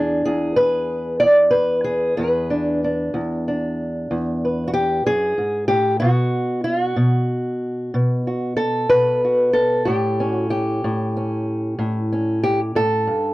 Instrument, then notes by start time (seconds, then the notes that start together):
steel-string acoustic guitar
Already playing: E2 D4 G#4
0.25 E2 G#4
0.56 B4
1.20 E2 D5
1.51 B4
1.84 G#4
2.17 E2 B4
2.50 D4
2.84 D4
3.14 E2
3.48 D4
4.11 E2
4.45 B4
4.68 F#4
4.74 G4
5.06 F#2 G#4
5.38 G#2
5.68 A2 G4
6.00 B2 F#4
6.64 F4
6.84 F#4
6.96 B2
7.94 B2
8.27 F#4
8.57 A4
8.90 B2 B4
9.25 F#4
9.53 A4
9.85 A2 G4
10.20 C#4
10.31 F#4
10.50 G4
10.84 A2
11.17 C#4
11.79 A2
12.12 C#4
12.43 G4
12.75 A2 A4
13.07 G2